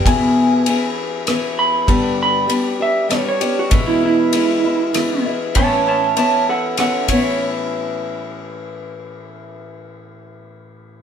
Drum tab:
RD |x-x-x-|x-x-xx|x-x-x-|x-x-xx|
SD |----r-|----r-|----r-|----r-|
BD |o-----|o-----|o-----|o----o|

RD |------|------|
SD |------|------|
BD |------|------|